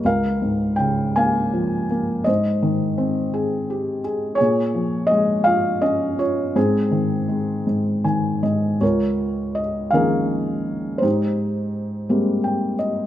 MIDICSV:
0, 0, Header, 1, 2, 480
1, 0, Start_track
1, 0, Key_signature, -4, "major"
1, 0, Tempo, 736196
1, 25, Time_signature, 6, 3, 24, 8
1, 1465, Tempo, 718563
1, 4345, Tempo, 754717
1, 5785, Tempo, 734394
1, 7225, Tempo, 703400
1, 8617, End_track
2, 0, Start_track
2, 0, Title_t, "Felt piano"
2, 0, Program_c, 0, 0
2, 0, Control_c, 0, 64, 127
2, 30, Note_on_c, 0, 37, 42
2, 33, Control_c, 0, 64, 0
2, 38, Note_on_c, 0, 77, 66
2, 44, Note_on_c, 0, 70, 46
2, 139, Control_c, 0, 64, 127
2, 274, Note_on_c, 0, 44, 35
2, 486, Note_off_c, 0, 77, 0
2, 496, Note_on_c, 0, 79, 57
2, 512, Note_on_c, 0, 49, 35
2, 731, Note_off_c, 0, 70, 0
2, 750, Note_off_c, 0, 79, 0
2, 755, Note_on_c, 0, 80, 61
2, 756, Note_on_c, 0, 58, 43
2, 766, Note_on_c, 0, 77, 48
2, 1000, Note_on_c, 0, 53, 43
2, 1206, Note_off_c, 0, 44, 0
2, 1232, Note_off_c, 0, 58, 0
2, 1242, Note_on_c, 0, 58, 41
2, 1442, Note_off_c, 0, 37, 0
2, 1442, Note_off_c, 0, 49, 0
2, 1448, Note_off_c, 0, 77, 0
2, 1457, Note_off_c, 0, 53, 0
2, 1463, Note_on_c, 0, 75, 62
2, 1465, Note_off_c, 0, 58, 0
2, 1475, Control_c, 0, 64, 0
2, 1476, Note_on_c, 0, 72, 45
2, 1482, Note_on_c, 0, 44, 46
2, 1491, Note_off_c, 0, 80, 0
2, 1577, Control_c, 0, 64, 127
2, 1717, Note_on_c, 0, 51, 41
2, 1953, Note_on_c, 0, 60, 40
2, 2193, Note_on_c, 0, 68, 45
2, 2436, Note_on_c, 0, 67, 46
2, 2636, Note_off_c, 0, 75, 0
2, 2642, Note_off_c, 0, 51, 0
2, 2643, Note_off_c, 0, 72, 0
2, 2655, Note_off_c, 0, 68, 0
2, 2665, Note_on_c, 0, 68, 47
2, 2871, Note_on_c, 0, 73, 77
2, 2873, Note_off_c, 0, 60, 0
2, 2876, Note_off_c, 0, 68, 0
2, 2879, Note_off_c, 0, 44, 0
2, 2886, Note_on_c, 0, 68, 56
2, 2887, Note_off_c, 0, 67, 0
2, 2905, Control_c, 0, 64, 0
2, 2907, Note_on_c, 0, 46, 52
2, 3023, Control_c, 0, 64, 127
2, 3134, Note_on_c, 0, 53, 41
2, 3349, Note_on_c, 0, 75, 76
2, 3370, Note_off_c, 0, 73, 0
2, 3378, Note_on_c, 0, 56, 43
2, 3579, Note_off_c, 0, 68, 0
2, 3598, Note_on_c, 0, 77, 72
2, 3609, Note_off_c, 0, 75, 0
2, 3611, Note_on_c, 0, 65, 42
2, 3849, Note_on_c, 0, 75, 73
2, 3851, Note_on_c, 0, 61, 40
2, 3856, Note_off_c, 0, 77, 0
2, 4075, Note_off_c, 0, 53, 0
2, 4086, Note_off_c, 0, 65, 0
2, 4096, Note_on_c, 0, 65, 40
2, 4099, Note_on_c, 0, 73, 55
2, 4104, Note_off_c, 0, 75, 0
2, 4323, Note_off_c, 0, 46, 0
2, 4323, Note_off_c, 0, 56, 0
2, 4327, Note_off_c, 0, 73, 0
2, 4328, Note_off_c, 0, 61, 0
2, 4336, Note_off_c, 0, 65, 0
2, 4343, Note_on_c, 0, 44, 48
2, 4346, Note_on_c, 0, 60, 44
2, 4346, Note_on_c, 0, 68, 60
2, 4355, Control_c, 0, 64, 0
2, 4466, Control_c, 0, 64, 127
2, 4571, Note_on_c, 0, 51, 36
2, 4809, Note_on_c, 0, 56, 37
2, 5042, Note_off_c, 0, 44, 0
2, 5051, Note_on_c, 0, 44, 38
2, 5278, Note_off_c, 0, 60, 0
2, 5278, Note_off_c, 0, 68, 0
2, 5281, Note_off_c, 0, 51, 0
2, 5290, Note_on_c, 0, 51, 35
2, 5290, Note_on_c, 0, 80, 43
2, 5521, Note_off_c, 0, 80, 0
2, 5525, Note_off_c, 0, 44, 0
2, 5534, Note_on_c, 0, 44, 39
2, 5534, Note_on_c, 0, 75, 47
2, 5754, Note_off_c, 0, 56, 0
2, 5762, Note_off_c, 0, 75, 0
2, 5763, Note_off_c, 0, 51, 0
2, 5772, Note_off_c, 0, 44, 0
2, 5777, Note_on_c, 0, 73, 52
2, 5778, Note_on_c, 0, 37, 34
2, 5788, Note_on_c, 0, 70, 37
2, 5792, Control_c, 0, 64, 0
2, 5792, Note_on_c, 0, 65, 37
2, 5886, Control_c, 0, 64, 127
2, 6260, Note_on_c, 0, 75, 51
2, 6281, Note_off_c, 0, 73, 0
2, 6485, Note_off_c, 0, 70, 0
2, 6487, Note_off_c, 0, 65, 0
2, 6487, Note_off_c, 0, 75, 0
2, 6493, Note_on_c, 0, 77, 58
2, 6507, Note_on_c, 0, 51, 27
2, 6508, Note_on_c, 0, 53, 25
2, 6510, Note_on_c, 0, 58, 28
2, 6510, Note_on_c, 0, 61, 35
2, 6518, Note_on_c, 0, 70, 46
2, 6520, Note_on_c, 0, 68, 43
2, 7195, Note_off_c, 0, 37, 0
2, 7196, Note_on_c, 0, 72, 52
2, 7201, Note_off_c, 0, 51, 0
2, 7202, Note_off_c, 0, 53, 0
2, 7202, Note_off_c, 0, 70, 0
2, 7203, Note_off_c, 0, 58, 0
2, 7203, Note_off_c, 0, 61, 0
2, 7203, Note_off_c, 0, 68, 0
2, 7220, Note_on_c, 0, 44, 39
2, 7226, Note_on_c, 0, 63, 37
2, 7226, Note_on_c, 0, 67, 35
2, 7234, Control_c, 0, 64, 0
2, 7238, Note_off_c, 0, 77, 0
2, 7344, Control_c, 0, 64, 127
2, 7953, Note_on_c, 0, 56, 29
2, 7954, Note_on_c, 0, 58, 32
2, 7956, Note_on_c, 0, 55, 34
2, 7958, Note_on_c, 0, 60, 34
2, 8189, Note_on_c, 0, 79, 46
2, 8383, Note_off_c, 0, 72, 0
2, 8399, Note_off_c, 0, 63, 0
2, 8399, Note_off_c, 0, 67, 0
2, 8410, Note_off_c, 0, 79, 0
2, 8428, Note_on_c, 0, 75, 48
2, 8617, Note_off_c, 0, 44, 0
2, 8617, Note_off_c, 0, 55, 0
2, 8617, Note_off_c, 0, 56, 0
2, 8617, Note_off_c, 0, 58, 0
2, 8617, Note_off_c, 0, 60, 0
2, 8617, Note_off_c, 0, 75, 0
2, 8617, End_track
0, 0, End_of_file